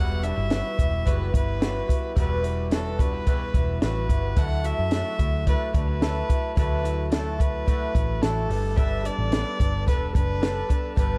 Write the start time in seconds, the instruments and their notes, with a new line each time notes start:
Already playing: picked electric bass E1, twelve-string acoustic guitar E2 B2 E3 G3, violin F#5
0.00 twelve-string acoustic guitar B3 F#4
0.23 twelve-string acoustic guitar E3 G3 B3 F#4, clean electric guitar D4, violin E5, closed hi-hat
0.36 picked electric bass G1, clean electric guitar E4
0.50 twelve-string acoustic guitar E3 G3 B3 F#4, snare, closed hi-hat
0.78 picked electric bass E1, twelve-string acoustic guitar E3 G3 B3 F#4, clean electric guitar E4, kick, closed hi-hat
1.05 picked electric bass F#1, twelve-string acoustic guitar E2 B2 E3 G3 B3 F#4, violin B4, kick, closed hi-hat
1.33 picked electric bass G1, twelve-string acoustic guitar E3 G3 B3 F#4, clean electric guitar E4, violin B4, kick, closed hi-hat
1.60 twelve-string acoustic guitar E3 G3 B3 F#4, snare, closed hi-hat
1.87 twelve-string acoustic guitar E3 G3 B3 F#4, clean electric guitar E4, kick, closed hi-hat
2.15 picked electric bass E1, twelve-string acoustic guitar E2 B2 E3 G3 B3 F#4, violin B4, kick, closed hi-hat
2.43 twelve-string acoustic guitar E3 G3 B3 F#4, clean electric guitar E4, closed hi-hat
2.71 twelve-string acoustic guitar E3 G3 B3 F#4, violin A4, snare, closed hi-hat
2.99 twelve-string acoustic guitar E3 G3 B3 F#4, clean electric guitar D4, violin B4, kick, closed hi-hat
3.13 clean electric guitar E4
3.26 twelve-string acoustic guitar E2 B2 E3 G3 B3 F#4, kick, closed hi-hat
3.54 picked electric bass E1, twelve-string acoustic guitar G3 B3 F#4, clean electric guitar E4, kick, closed hi-hat
3.58 twelve-string acoustic guitar E3
3.82 picked electric bass A1, twelve-string acoustic guitar E3 G3 B3 F#4, violin B4, snare, closed hi-hat
4.09 picked electric bass G1, twelve-string acoustic guitar E3 G3 B3 F#4, clean electric guitar E4, kick, closed hi-hat
4.36 picked electric bass D2, twelve-string acoustic guitar D3 A3 E4 F#4, clean electric guitar F#3 A4, violin F#5, kick, closed hi-hat
4.64 twelve-string acoustic guitar A3 E4 F#4, violin E5, closed hi-hat
4.79 picked electric bass F#2
4.91 twelve-string acoustic guitar D3 A3 E4 F#4, snare, closed hi-hat
5.18 picked electric bass D2, twelve-string acoustic guitar A3 E4 F#4, kick, closed hi-hat
5.46 twelve-string acoustic guitar D3 A3 E4 F#4, violin B4, kick, closed hi-hat
5.73 picked electric bass D2, twelve-string acoustic guitar A3 E4 F#4, clean electric guitar D4, violin B4, kick, closed hi-hat
5.88 clean electric guitar E4
6.00 twelve-string acoustic guitar D3 A3 E4 F#4, clean electric guitar A4, snare, closed hi-hat
6.28 twelve-string acoustic guitar A3 E4 F#4, kick, closed hi-hat
6.56 picked electric bass D2, twelve-string acoustic guitar D3 A3 E4 F#4, clean electric guitar F#3 A4, violin B4, kick, closed hi-hat
6.84 twelve-string acoustic guitar A3 E4 F#4, closed hi-hat
7.11 twelve-string acoustic guitar D3 A3 E4 F#4, violin A4, snare, closed hi-hat
7.38 twelve-string acoustic guitar A3 E4 F#4, violin B4, kick, closed hi-hat
7.66 twelve-string acoustic guitar D3 A3 E4 F#4, kick, closed hi-hat
7.94 picked electric bass A1, twelve-string acoustic guitar A3 E4 F#4, kick, closed hi-hat
8.22 picked electric bass A1, twelve-string acoustic guitar D3 A3 E4 F#4, violin A4, clean electric guitar A4, snare, closed hi-hat
8.49 picked electric bass G1, clean electric guitar G3, twelve-string acoustic guitar B3 D4 A4, open hi-hat
8.76 twelve-string acoustic guitar G3 B3 D4 A4, violin E5, kick, closed hi-hat
9.04 twelve-string acoustic guitar B3 D4 A4, violin D5, closed hi-hat
9.19 picked electric bass A1
9.32 twelve-string acoustic guitar G3 B3 D4 A4, snare, closed hi-hat
9.59 picked electric bass G1, twelve-string acoustic guitar B3 D4 A4, kick, closed hi-hat
9.87 picked electric bass E1, twelve-string acoustic guitar G3 B3 D4 A4, violin B4, kick, closed hi-hat
10.13 picked electric bass F#1, twelve-string acoustic guitar B3 D4 A4, violin B4, kick, closed hi-hat
10.40 twelve-string acoustic guitar G3 B3 D4 A4, snare, closed hi-hat
10.68 twelve-string acoustic guitar B3 D4 A4, kick, closed hi-hat
10.96 picked electric bass G1, twelve-string acoustic guitar G3 B3 D4 A4, violin B4, kick, closed hi-hat